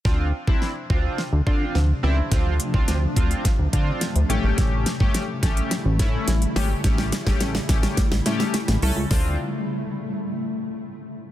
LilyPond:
<<
  \new Staff \with { instrumentName = "Analog polysynth" } { \time 4/4 \key a \minor \tempo 4 = 106 <c' d' f'>8 r16 <c' d' e'>8 r16 <c' d' f'>8 r8 <c' d' f'>8 r8 <c' d' e'>16 r16 | <c' d' f'>8 r16 <c' d' f'>8 r16 <c' d' f'>8 r8 <c' d' f'>8 r8 <a cis' g'>8~ | <a cis' g'>8 r16 <a cis' g'>8 r16 <a cis' g'>8 r8 <a cis' e'>8 r8 <a cis' g'>16 r16 | <a cis' g'>8 r16 <a cis' g'>8 r16 <a cis' g'>8 r8 <a cis' g'>8 r8 <a cis' a'>16 r16 |
<c' d' f'>8 r2. r8 | }
  \new Staff \with { instrumentName = "Ambient pad" } { \clef bass \time 4/4 \key a \minor << { <c f d'>1~ | <c f d'>2.~ <c f d'>8 <cis g e'>8~ | <cis g e'>1~ | <cis g e'>1 |
r1 | } \\ { a1~ | a1~ | a1~ | a1 |
r1 | } >> }
  \new Staff \with { instrumentName = "Analog synth bass" } { \clef bass \time 4/4 \key a \minor d,8. c,16 r8 d,8 r16 d,16 d8 d,8 cis,8 | d,8. c,16 d,8 d,8 r16 d,16 d8 r16 d,16 a,,16 gis,,16 | a,,8. g,,16 r8 a,,8 r16 a,,16 a,8 a,,8 gis,,8 | a,,8. g,,16 a,,8 a,,8 r16 a,,16 a,8 r16 a,,16 c,16 cis,16 |
d,8 r2. r8 | }
  \new DrumStaff \with { instrumentName = "Drums" } \drummode { \time 4/4 <bd sn>8. bd16 sn8 bd8 sn8 bd8 sn4 | <hh bd sn>8 hh16 bd16 <hh sn>8 <hh bd>16 hh16 <hh bd sn>8 <hh bd>8 <hh sn>16 hh16 hh8 | <hh bd sn>8 <hh sn>16 bd16 <hh sn>8 <hh bd sn>16 hh16 <hh sn>8 <hh bd sn>8 <hh sn>16 hh16 <hho sn>8 | <hh bd sn>16 sn16 <hh sn>16 <bd sn>16 <hh sn>16 sn16 <hh bd sn>16 <hh sn>16 <hh bd sn>16 sn16 <hh sn>16 sn16 <hh sn>16 <hh sn>16 hho8 |
<hho bd sn>4 r4 r4 r4 | }
>>